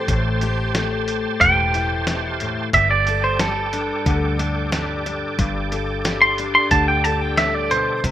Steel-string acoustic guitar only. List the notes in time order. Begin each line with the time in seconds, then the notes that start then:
Already playing: A3 G4
0.09 A2
0.43 G4
0.75 A3
1.41 E3
1.75 E4
2.08 B2
2.41 A2
2.74 G2
3.08 A4
3.40 G3
3.73 D4
4.06 D3
4.39 D4
4.72 G3 D4
5.06 D4
5.39 G2
5.72 A4
6.05 G3
6.39 D4
6.71 D3
7.05 A4
7.37 A2
7.71 B2
8.04 C3 C4